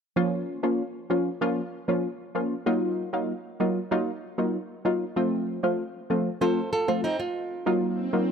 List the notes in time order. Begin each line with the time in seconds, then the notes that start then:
0.16 F3 A#3 C#4 F4
0.63 F3 A#3 C#4 F4
1.10 F3 A#3 C#4 F4
1.41 F3 A#3 C#4 F4
1.88 F3 A#3 C#4 F4
2.35 F3 A#3 C#4 F4
2.66 F#3 A#3 D#4 F4
3.13 F#3 A#3 D#4 F4
3.60 F#3 A#3 D#4 F4
3.91 F#3 A#3 D#4 F4
4.38 F#3 A#3 D#4 F4
4.85 F#3 A#3 D#4 F4
5.16 F3 A3 C4 F4
5.63 F3 A3 C4 F4
6.10 F3 A3 C4 F4
6.41 F3 A3 C4 F4 A4 C5
6.73 F4 A4
6.88 F3 A3 C4 F4
7.04 C4 D#4
7.20 F4
7.66 F#3 A#3 D#4 F4, swell
8.13 F#3 A#3 D#4 F4